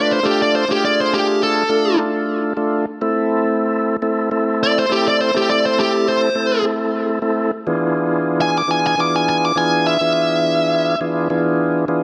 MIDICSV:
0, 0, Header, 1, 3, 480
1, 0, Start_track
1, 0, Key_signature, 0, "minor"
1, 0, Tempo, 582524
1, 429, Time_signature, 4, 2, 24, 8
1, 9915, End_track
2, 0, Start_track
2, 0, Title_t, "Lead electric guitar"
2, 0, Program_c, 0, 29
2, 0, Note_on_c, 0, 74, 82
2, 90, Note_off_c, 0, 74, 0
2, 102, Note_on_c, 0, 72, 68
2, 198, Note_off_c, 0, 72, 0
2, 211, Note_on_c, 0, 67, 73
2, 327, Note_off_c, 0, 67, 0
2, 346, Note_on_c, 0, 74, 65
2, 440, Note_off_c, 0, 74, 0
2, 455, Note_on_c, 0, 72, 83
2, 569, Note_off_c, 0, 72, 0
2, 586, Note_on_c, 0, 67, 75
2, 680, Note_off_c, 0, 67, 0
2, 698, Note_on_c, 0, 74, 81
2, 811, Note_off_c, 0, 74, 0
2, 827, Note_on_c, 0, 72, 68
2, 920, Note_off_c, 0, 72, 0
2, 941, Note_on_c, 0, 67, 79
2, 1159, Note_off_c, 0, 67, 0
2, 1178, Note_on_c, 0, 69, 87
2, 1630, Note_off_c, 0, 69, 0
2, 3818, Note_on_c, 0, 74, 78
2, 3931, Note_off_c, 0, 74, 0
2, 3946, Note_on_c, 0, 72, 73
2, 4040, Note_off_c, 0, 72, 0
2, 4055, Note_on_c, 0, 67, 79
2, 4170, Note_off_c, 0, 67, 0
2, 4183, Note_on_c, 0, 74, 74
2, 4279, Note_off_c, 0, 74, 0
2, 4291, Note_on_c, 0, 72, 76
2, 4408, Note_off_c, 0, 72, 0
2, 4422, Note_on_c, 0, 67, 75
2, 4519, Note_off_c, 0, 67, 0
2, 4528, Note_on_c, 0, 74, 77
2, 4646, Note_off_c, 0, 74, 0
2, 4659, Note_on_c, 0, 72, 77
2, 4757, Note_off_c, 0, 72, 0
2, 4775, Note_on_c, 0, 67, 84
2, 4997, Note_off_c, 0, 67, 0
2, 5013, Note_on_c, 0, 72, 85
2, 5468, Note_off_c, 0, 72, 0
2, 6934, Note_on_c, 0, 80, 94
2, 7050, Note_off_c, 0, 80, 0
2, 7068, Note_on_c, 0, 86, 81
2, 7162, Note_off_c, 0, 86, 0
2, 7176, Note_on_c, 0, 80, 77
2, 7291, Note_off_c, 0, 80, 0
2, 7307, Note_on_c, 0, 80, 85
2, 7402, Note_off_c, 0, 80, 0
2, 7419, Note_on_c, 0, 86, 91
2, 7533, Note_off_c, 0, 86, 0
2, 7546, Note_on_c, 0, 80, 73
2, 7641, Note_off_c, 0, 80, 0
2, 7656, Note_on_c, 0, 80, 81
2, 7771, Note_off_c, 0, 80, 0
2, 7787, Note_on_c, 0, 86, 76
2, 7882, Note_off_c, 0, 86, 0
2, 7890, Note_on_c, 0, 80, 81
2, 8114, Note_off_c, 0, 80, 0
2, 8131, Note_on_c, 0, 76, 79
2, 9053, Note_off_c, 0, 76, 0
2, 9915, End_track
3, 0, Start_track
3, 0, Title_t, "Tonewheel organ"
3, 0, Program_c, 1, 16
3, 0, Note_on_c, 1, 57, 90
3, 0, Note_on_c, 1, 62, 83
3, 0, Note_on_c, 1, 65, 88
3, 0, Note_on_c, 1, 71, 105
3, 167, Note_off_c, 1, 57, 0
3, 167, Note_off_c, 1, 65, 0
3, 167, Note_off_c, 1, 71, 0
3, 168, Note_off_c, 1, 62, 0
3, 190, Note_on_c, 1, 57, 76
3, 190, Note_on_c, 1, 62, 76
3, 191, Note_on_c, 1, 65, 69
3, 192, Note_on_c, 1, 69, 88
3, 537, Note_off_c, 1, 57, 0
3, 537, Note_off_c, 1, 62, 0
3, 538, Note_off_c, 1, 65, 0
3, 538, Note_off_c, 1, 69, 0
3, 564, Note_on_c, 1, 57, 73
3, 564, Note_on_c, 1, 65, 66
3, 566, Note_on_c, 1, 62, 68
3, 566, Note_on_c, 1, 68, 80
3, 1347, Note_off_c, 1, 57, 0
3, 1347, Note_off_c, 1, 65, 0
3, 1348, Note_off_c, 1, 62, 0
3, 1348, Note_off_c, 1, 68, 0
3, 1395, Note_on_c, 1, 65, 61
3, 1395, Note_on_c, 1, 69, 74
3, 1396, Note_on_c, 1, 57, 65
3, 1396, Note_on_c, 1, 62, 58
3, 1620, Note_off_c, 1, 57, 0
3, 1620, Note_off_c, 1, 62, 0
3, 1620, Note_off_c, 1, 65, 0
3, 1620, Note_off_c, 1, 69, 0
3, 1634, Note_on_c, 1, 57, 76
3, 1634, Note_on_c, 1, 62, 63
3, 1634, Note_on_c, 1, 69, 80
3, 1635, Note_on_c, 1, 65, 73
3, 2087, Note_off_c, 1, 57, 0
3, 2087, Note_off_c, 1, 62, 0
3, 2087, Note_off_c, 1, 65, 0
3, 2087, Note_off_c, 1, 69, 0
3, 2116, Note_on_c, 1, 62, 88
3, 2116, Note_on_c, 1, 69, 100
3, 2117, Note_on_c, 1, 57, 85
3, 2117, Note_on_c, 1, 65, 84
3, 2353, Note_off_c, 1, 62, 0
3, 2353, Note_off_c, 1, 69, 0
3, 2354, Note_off_c, 1, 57, 0
3, 2354, Note_off_c, 1, 65, 0
3, 2484, Note_on_c, 1, 60, 77
3, 2484, Note_on_c, 1, 69, 100
3, 2486, Note_on_c, 1, 57, 84
3, 2487, Note_on_c, 1, 64, 80
3, 3267, Note_off_c, 1, 60, 0
3, 3268, Note_off_c, 1, 57, 0
3, 3268, Note_off_c, 1, 69, 0
3, 3269, Note_off_c, 1, 64, 0
3, 3313, Note_on_c, 1, 60, 76
3, 3314, Note_on_c, 1, 57, 79
3, 3315, Note_on_c, 1, 69, 88
3, 3316, Note_on_c, 1, 64, 69
3, 3539, Note_off_c, 1, 60, 0
3, 3540, Note_off_c, 1, 57, 0
3, 3540, Note_off_c, 1, 69, 0
3, 3541, Note_off_c, 1, 64, 0
3, 3553, Note_on_c, 1, 69, 97
3, 3554, Note_on_c, 1, 60, 77
3, 3554, Note_on_c, 1, 64, 75
3, 3555, Note_on_c, 1, 57, 94
3, 4007, Note_off_c, 1, 60, 0
3, 4007, Note_off_c, 1, 64, 0
3, 4007, Note_off_c, 1, 69, 0
3, 4008, Note_off_c, 1, 57, 0
3, 4032, Note_on_c, 1, 60, 71
3, 4032, Note_on_c, 1, 69, 83
3, 4033, Note_on_c, 1, 57, 74
3, 4034, Note_on_c, 1, 64, 69
3, 4379, Note_off_c, 1, 60, 0
3, 4379, Note_off_c, 1, 69, 0
3, 4380, Note_off_c, 1, 57, 0
3, 4380, Note_off_c, 1, 64, 0
3, 4404, Note_on_c, 1, 60, 72
3, 4404, Note_on_c, 1, 64, 66
3, 4405, Note_on_c, 1, 57, 70
3, 4406, Note_on_c, 1, 69, 81
3, 5188, Note_off_c, 1, 57, 0
3, 5188, Note_off_c, 1, 60, 0
3, 5188, Note_off_c, 1, 64, 0
3, 5189, Note_off_c, 1, 69, 0
3, 5235, Note_on_c, 1, 57, 66
3, 5236, Note_on_c, 1, 60, 60
3, 5236, Note_on_c, 1, 69, 74
3, 5237, Note_on_c, 1, 64, 57
3, 5458, Note_off_c, 1, 60, 0
3, 5459, Note_off_c, 1, 64, 0
3, 5460, Note_off_c, 1, 57, 0
3, 5460, Note_off_c, 1, 69, 0
3, 5468, Note_on_c, 1, 60, 69
3, 5469, Note_on_c, 1, 64, 67
3, 5470, Note_on_c, 1, 57, 75
3, 5470, Note_on_c, 1, 69, 80
3, 5925, Note_off_c, 1, 57, 0
3, 5925, Note_off_c, 1, 60, 0
3, 5925, Note_off_c, 1, 64, 0
3, 5925, Note_off_c, 1, 69, 0
3, 5949, Note_on_c, 1, 57, 88
3, 5949, Note_on_c, 1, 64, 82
3, 5950, Note_on_c, 1, 60, 76
3, 5950, Note_on_c, 1, 69, 97
3, 6191, Note_off_c, 1, 57, 0
3, 6191, Note_off_c, 1, 60, 0
3, 6191, Note_off_c, 1, 64, 0
3, 6191, Note_off_c, 1, 69, 0
3, 6317, Note_on_c, 1, 59, 80
3, 6318, Note_on_c, 1, 52, 83
3, 6318, Note_on_c, 1, 68, 93
3, 6319, Note_on_c, 1, 62, 75
3, 6319, Note_on_c, 1, 65, 70
3, 7105, Note_off_c, 1, 52, 0
3, 7105, Note_off_c, 1, 59, 0
3, 7105, Note_off_c, 1, 68, 0
3, 7106, Note_off_c, 1, 62, 0
3, 7106, Note_off_c, 1, 65, 0
3, 7151, Note_on_c, 1, 52, 59
3, 7151, Note_on_c, 1, 65, 54
3, 7151, Note_on_c, 1, 68, 68
3, 7152, Note_on_c, 1, 59, 63
3, 7152, Note_on_c, 1, 62, 61
3, 7379, Note_off_c, 1, 52, 0
3, 7379, Note_off_c, 1, 65, 0
3, 7379, Note_off_c, 1, 68, 0
3, 7380, Note_off_c, 1, 59, 0
3, 7380, Note_off_c, 1, 62, 0
3, 7396, Note_on_c, 1, 62, 68
3, 7397, Note_on_c, 1, 52, 81
3, 7397, Note_on_c, 1, 59, 66
3, 7397, Note_on_c, 1, 65, 67
3, 7399, Note_on_c, 1, 68, 79
3, 7848, Note_off_c, 1, 62, 0
3, 7849, Note_off_c, 1, 52, 0
3, 7849, Note_off_c, 1, 59, 0
3, 7849, Note_off_c, 1, 65, 0
3, 7850, Note_off_c, 1, 68, 0
3, 7875, Note_on_c, 1, 52, 80
3, 7875, Note_on_c, 1, 59, 72
3, 7875, Note_on_c, 1, 62, 68
3, 7875, Note_on_c, 1, 68, 88
3, 7877, Note_on_c, 1, 65, 69
3, 8221, Note_off_c, 1, 52, 0
3, 8221, Note_off_c, 1, 59, 0
3, 8221, Note_off_c, 1, 62, 0
3, 8221, Note_off_c, 1, 68, 0
3, 8222, Note_off_c, 1, 65, 0
3, 8245, Note_on_c, 1, 62, 65
3, 8245, Note_on_c, 1, 65, 71
3, 8246, Note_on_c, 1, 52, 74
3, 8246, Note_on_c, 1, 59, 66
3, 8246, Note_on_c, 1, 68, 75
3, 9028, Note_off_c, 1, 62, 0
3, 9028, Note_off_c, 1, 65, 0
3, 9029, Note_off_c, 1, 52, 0
3, 9029, Note_off_c, 1, 59, 0
3, 9029, Note_off_c, 1, 68, 0
3, 9070, Note_on_c, 1, 62, 74
3, 9071, Note_on_c, 1, 52, 78
3, 9071, Note_on_c, 1, 68, 83
3, 9072, Note_on_c, 1, 59, 67
3, 9072, Note_on_c, 1, 65, 68
3, 9298, Note_off_c, 1, 62, 0
3, 9299, Note_off_c, 1, 52, 0
3, 9299, Note_off_c, 1, 59, 0
3, 9299, Note_off_c, 1, 65, 0
3, 9299, Note_off_c, 1, 68, 0
3, 9313, Note_on_c, 1, 52, 93
3, 9313, Note_on_c, 1, 59, 79
3, 9313, Note_on_c, 1, 62, 89
3, 9313, Note_on_c, 1, 65, 82
3, 9313, Note_on_c, 1, 68, 101
3, 9766, Note_off_c, 1, 52, 0
3, 9766, Note_off_c, 1, 59, 0
3, 9766, Note_off_c, 1, 65, 0
3, 9766, Note_off_c, 1, 68, 0
3, 9767, Note_off_c, 1, 62, 0
3, 9790, Note_on_c, 1, 52, 93
3, 9791, Note_on_c, 1, 62, 84
3, 9792, Note_on_c, 1, 59, 83
3, 9792, Note_on_c, 1, 65, 82
3, 9792, Note_on_c, 1, 68, 102
3, 9915, Note_off_c, 1, 52, 0
3, 9915, Note_off_c, 1, 59, 0
3, 9915, Note_off_c, 1, 62, 0
3, 9915, Note_off_c, 1, 65, 0
3, 9915, Note_off_c, 1, 68, 0
3, 9915, End_track
0, 0, End_of_file